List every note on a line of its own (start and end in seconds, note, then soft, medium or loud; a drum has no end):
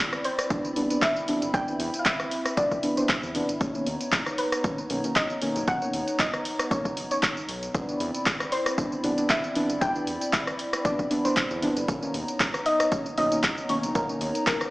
0.00 3.57 C4 medium
0.00 3.57 E4 medium
0.00 1.52 D5 loud
0.00 3.57 B5 medium
0.13 cross-stick medium
0.13 tambourine soft
0.24 1.05 C5 medium
0.24 open hi-hat medium
0.39 cross-stick medium
0.39 closed hi-hat medium
0.39 tambourine medium
0.50 0.66 C3 medium
0.50 0.66 E3 medium
0.50 0.66 B3 medium
0.50 0.66 D4 loud
0.50 kick loud
0.50 closed hi-hat medium
0.50 tambourine medium
0.65 tambourine soft
0.76 0.87 C2 loud
0.76 0.88 C3 medium
0.76 0.88 E3 medium
0.76 0.88 B3 medium
0.76 0.88 D4 medium
0.76 open hi-hat loud
0.90 1.04 C3 medium
0.90 1.04 E3 medium
0.90 1.04 B3 medium
0.90 1.04 D4 medium
0.90 closed hi-hat medium
0.90 tambourine medium
1.02 1.55 E5 loud
1.02 kick loud
1.02 clap loud
1.02 closed hi-hat medium
1.02 tambourine medium
1.16 tambourine soft
1.28 1.44 C3 medium
1.28 1.44 E3 medium
1.28 1.44 B3 medium
1.28 1.44 D4 loud
1.28 open hi-hat loud
1.42 1.51 G1 medium
1.42 closed hi-hat medium
1.42 tambourine medium
1.54 1.64 C2 loud
1.54 1.65 C3 medium
1.54 1.65 E3 medium
1.54 1.65 B3 medium
1.54 1.65 D4 loud
1.54 3.59 E5 loud
1.54 2.01 G5 loud
1.54 kick loud
1.54 closed hi-hat medium
1.54 tambourine medium
1.68 1.81 C3 medium
1.68 1.81 E3 medium
1.68 1.82 B3 medium
1.68 1.82 D4 medium
1.68 tambourine soft
1.80 1.90 E2 loud
1.80 open hi-hat loud
1.94 closed hi-hat medium
1.94 tambourine medium
1.99 2.06 F5 medium
2.05 2.59 E5 loud
2.05 kick loud
2.05 clap loud
2.05 closed hi-hat medium
2.05 tambourine medium
2.20 cross-stick medium
2.20 tambourine soft
2.31 open hi-hat loud
2.45 cross-stick medium
2.45 closed hi-hat medium
2.45 tambourine medium
2.57 2.73 C3 medium
2.57 2.73 E3 medium
2.57 2.73 B3 medium
2.57 2.73 D4 loud
2.57 2.98 D5 loud
2.57 kick loud
2.57 closed hi-hat medium
2.57 tambourine medium
2.71 kick medium
2.71 tambourine soft
2.83 2.95 C3 medium
2.83 2.95 E3 medium
2.83 2.95 B3 medium
2.83 2.95 D4 medium
2.83 open hi-hat loud
2.97 3.11 C3 medium
2.97 3.11 E3 medium
2.97 3.11 B3 medium
2.97 3.11 D4 medium
2.97 3.32 C5 medium
2.97 closed hi-hat medium
2.97 tambourine medium
3.09 kick loud
3.09 clap loud
3.09 closed hi-hat medium
3.09 tambourine medium
3.23 3.42 E2 loud
3.23 tambourine soft
3.35 3.50 C3 loud
3.35 3.50 E3 medium
3.35 3.50 B3 medium
3.35 3.51 D4 loud
3.35 open hi-hat loud
3.49 3.58 G1 medium
3.49 closed hi-hat medium
3.49 tambourine medium
3.61 3.71 B1 medium
3.61 3.71 B2 medium
3.61 3.71 D#3 medium
3.61 3.72 A#3 medium
3.61 7.71 B3 medium
3.61 3.72 C#4 loud
3.61 7.71 D#4 medium
3.61 7.71 C#5 medium
3.61 7.71 A#5 medium
3.61 kick loud
3.61 closed hi-hat medium
3.61 tambourine medium
3.75 3.88 B2 medium
3.75 3.88 D#3 medium
3.75 3.88 A#3 medium
3.75 3.88 C#4 medium
3.75 tambourine soft
3.87 3.97 D#2 loud
3.87 open hi-hat loud
4.01 closed hi-hat medium
4.01 tambourine medium
4.12 kick loud
4.12 clap loud
4.12 closed hi-hat medium
4.12 tambourine medium
4.26 cross-stick medium
4.26 tambourine soft
4.38 5.18 B4 medium
4.38 open hi-hat loud
4.52 cross-stick medium
4.52 closed hi-hat soft
4.52 tambourine medium
4.64 4.80 B2 medium
4.64 4.80 D#3 medium
4.64 4.80 A#3 medium
4.64 4.80 C#4 loud
4.64 kick loud
4.64 closed hi-hat medium
4.64 tambourine medium
4.78 tambourine soft
4.90 5.01 B1 loud
4.90 5.02 B2 medium
4.90 5.02 D#3 medium
4.90 5.02 A#3 medium
4.90 5.02 C#4 medium
4.90 open hi-hat loud
5.04 5.18 B2 medium
5.04 5.18 D#3 medium
5.04 5.18 A#3 medium
5.04 5.18 C#4 medium
5.04 closed hi-hat medium
5.04 tambourine medium
5.16 5.69 D#5 loud
5.16 kick loud
5.16 clap loud
5.16 closed hi-hat medium
5.16 tambourine medium
5.30 tambourine soft
5.42 5.57 B2 loud
5.42 5.57 D#3 medium
5.42 5.57 A#3 medium
5.42 5.57 C#4 loud
5.42 open hi-hat loud
5.56 5.65 F#1 medium
5.56 closed hi-hat medium
5.56 tambourine medium
5.68 5.78 B1 loud
5.68 5.78 B2 medium
5.68 5.78 D#3 medium
5.68 5.78 A#3 medium
5.68 5.79 C#4 loud
5.68 6.21 F#5 loud
5.68 kick loud
5.68 closed hi-hat medium
5.68 tambourine medium
5.82 5.95 B2 medium
5.82 5.95 D#3 medium
5.82 5.95 A#3 medium
5.82 5.95 C#4 medium
5.82 tambourine soft
5.93 6.04 D#2 loud
5.93 open hi-hat loud
6.08 closed hi-hat soft
6.08 tambourine medium
6.19 6.73 D#5 loud
6.19 kick loud
6.19 clap loud
6.19 closed hi-hat medium
6.19 tambourine medium
6.33 cross-stick medium
6.33 tambourine soft
6.45 open hi-hat loud
6.59 cross-stick medium
6.59 closed hi-hat medium
6.59 tambourine medium
6.71 6.87 B2 medium
6.71 6.87 D#3 medium
6.71 6.87 A#3 medium
6.71 6.87 C#4 loud
6.71 7.10 C#5 loud
6.71 kick loud
6.71 closed hi-hat medium
6.71 tambourine medium
6.85 6.94 F#1 medium
6.85 kick medium
6.85 tambourine soft
6.97 7.08 F#1 medium
6.97 open hi-hat loud
7.11 7.46 C#5 medium
7.11 closed hi-hat medium
7.11 tambourine medium
7.23 kick loud
7.23 clap loud
7.23 closed hi-hat medium
7.23 tambourine medium
7.37 tambourine soft
7.49 7.69 B1 loud
7.49 open hi-hat loud
7.63 closed hi-hat soft
7.63 tambourine medium
7.74 7.85 C2 loud
7.74 7.85 C3 medium
7.74 7.85 E3 medium
7.74 7.85 B3 medium
7.74 11.84 C4 medium
7.74 7.85 D4 loud
7.74 11.84 E4 medium
7.74 11.84 D5 medium
7.74 11.84 B5 medium
7.74 kick loud
7.74 closed hi-hat medium
7.74 tambourine medium
7.89 8.02 C3 medium
7.89 8.02 E3 medium
7.89 8.02 B3 medium
7.89 8.02 D4 medium
7.89 tambourine soft
8.00 8.11 E2 loud
8.00 open hi-hat loud
8.14 closed hi-hat medium
8.14 tambourine medium
8.26 kick loud
8.26 clap loud
8.26 closed hi-hat medium
8.26 tambourine medium
8.40 cross-stick medium
8.40 tambourine soft
8.52 9.32 C5 medium
8.52 open hi-hat loud
8.66 cross-stick medium
8.66 closed hi-hat medium
8.66 tambourine medium
8.78 8.93 C3 medium
8.78 8.94 E3 medium
8.78 8.94 B3 medium
8.78 8.94 D4 loud
8.78 kick loud
8.78 closed hi-hat medium
8.78 tambourine medium
8.92 tambourine soft
9.04 9.14 C2 loud
9.04 9.16 C3 medium
9.04 9.16 E3 medium
9.04 9.16 B3 medium
9.04 9.16 D4 medium
9.04 open hi-hat loud
9.18 9.31 C3 medium
9.18 9.31 E3 medium
9.18 9.31 B3 medium
9.18 9.32 D4 medium
9.18 closed hi-hat soft
9.18 tambourine medium
9.29 9.78 E5 loud
9.29 kick loud
9.29 clap loud
9.29 closed hi-hat medium
9.29 tambourine medium
9.44 tambourine soft
9.55 9.71 C3 loud
9.55 9.71 E3 medium
9.55 9.71 B3 medium
9.55 9.71 D4 loud
9.55 open hi-hat loud
9.70 9.79 G1 medium
9.70 closed hi-hat medium
9.70 tambourine medium
9.81 9.92 C2 loud
9.81 9.92 C3 medium
9.81 9.92 E3 medium
9.81 9.92 B3 medium
9.81 9.92 D4 loud
9.81 10.35 G5 loud
9.81 kick loud
9.81 closed hi-hat medium
9.81 tambourine medium
9.95 10.09 C3 medium
9.95 10.09 E3 medium
9.95 10.09 B3 medium
9.95 10.09 D4 medium
9.95 tambourine soft
10.07 10.18 E2 loud
10.07 open hi-hat loud
10.21 closed hi-hat medium
10.21 tambourine medium
10.33 10.86 E5 loud
10.33 kick loud
10.33 clap loud
10.33 closed hi-hat medium
10.33 tambourine medium
10.47 cross-stick medium
10.47 tambourine soft
10.59 open hi-hat medium
10.73 cross-stick medium
10.73 closed hi-hat medium
10.73 tambourine medium
10.85 11.00 C3 medium
10.85 11.00 E3 medium
10.85 11.00 B3 medium
10.85 11.00 D4 loud
10.85 11.26 D5 loud
10.85 kick loud
10.85 closed hi-hat medium
10.85 tambourine medium
10.99 kick medium
10.99 tambourine soft
11.11 11.23 C3 medium
11.11 11.23 E3 medium
11.11 11.23 B3 medium
11.11 11.23 D4 medium
11.11 open hi-hat loud
11.25 11.38 C3 medium
11.25 11.38 E3 medium
11.25 11.38 B3 medium
11.25 11.38 D4 medium
11.25 11.60 C5 medium
11.25 closed hi-hat medium
11.25 tambourine medium
11.37 kick loud
11.37 clap loud
11.37 closed hi-hat medium
11.37 tambourine medium
11.51 11.69 E2 loud
11.51 tambourine soft
11.62 11.78 C3 loud
11.62 11.78 E3 medium
11.62 11.78 B3 medium
11.62 11.78 D4 loud
11.62 open hi-hat medium
11.77 11.85 G1 medium
11.77 closed hi-hat medium
11.77 tambourine medium
11.88 11.99 B1 loud
11.88 11.99 B2 medium
11.88 11.99 D#3 medium
11.88 11.99 A#3 medium
11.88 14.70 B3 medium
11.88 11.99 C#4 loud
11.88 14.70 D#4 medium
11.88 14.70 C#5 loud
11.88 14.70 A#5 medium
11.88 kick loud
11.88 closed hi-hat medium
11.88 tambourine medium
12.02 12.16 B2 medium
12.02 12.16 D#3 medium
12.02 12.16 A#3 medium
12.02 12.16 C#4 medium
12.02 tambourine soft
12.14 12.25 D#2 loud
12.14 open hi-hat loud
12.28 closed hi-hat medium
12.28 tambourine medium
12.40 kick loud
12.40 clap loud
12.40 closed hi-hat medium
12.40 tambourine medium
12.54 cross-stick medium
12.54 tambourine soft
12.66 13.16 D#5 loud
12.66 open hi-hat medium
12.80 cross-stick medium
12.80 closed hi-hat medium
12.80 tambourine medium
12.92 13.07 B2 medium
12.92 13.07 D#3 medium
12.92 13.07 A#3 medium
12.92 13.07 C#4 loud
12.92 kick loud
12.92 closed hi-hat medium
12.92 tambourine medium
13.06 tambourine soft
13.18 13.28 B1 loud
13.18 13.30 B2 medium
13.18 13.30 D#3 medium
13.18 13.30 A#3 medium
13.18 13.30 C#4 medium
13.18 13.71 D#5 loud
13.18 open hi-hat loud
13.32 13.45 B2 medium
13.32 13.45 D#3 medium
13.32 13.45 A#3 medium
13.32 13.45 C#4 medium
13.32 closed hi-hat medium
13.32 tambourine medium
13.43 kick loud
13.43 clap loud
13.43 closed hi-hat medium
13.43 tambourine medium
13.58 tambourine soft
13.69 13.85 B2 loud
13.69 13.85 D#3 medium
13.69 13.85 A#3 medium
13.69 13.85 C#4 loud
13.69 13.96 C#5 loud
13.69 open hi-hat medium
13.83 13.92 F#1 medium
13.83 closed hi-hat medium
13.83 tambourine medium
13.95 14.06 B1 medium
13.95 14.06 B2 medium
13.95 14.06 D#3 medium
13.95 14.06 A#3 medium
13.95 14.06 C#4 loud
13.95 14.46 A#4 loud
13.95 kick loud
13.95 closed hi-hat medium
13.95 tambourine medium
14.09 14.23 B2 medium
14.09 14.23 D#3 medium
14.09 14.23 A#3 medium
14.09 14.23 C#4 medium
14.09 tambourine soft
14.21 14.32 D#2 loud
14.21 open hi-hat loud
14.35 closed hi-hat medium
14.35 tambourine medium
14.47 14.70 A#4 medium
14.47 kick loud
14.47 clap loud
14.47 closed hi-hat medium
14.47 tambourine medium
14.61 cross-stick medium
14.61 tambourine soft